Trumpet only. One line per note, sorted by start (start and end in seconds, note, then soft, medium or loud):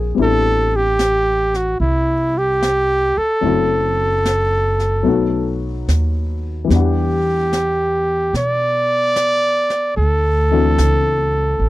0.23 0.78 A4 medium
0.76 1.58 G4 medium
1.56 1.80 F#4 medium
1.81 2.39 E4 medium
2.38 3.19 G4 medium
3.18 5.62 A4 medium
6.74 8.32 G4 medium
8.37 9.95 D5 loud
9.97 11.69 A4 medium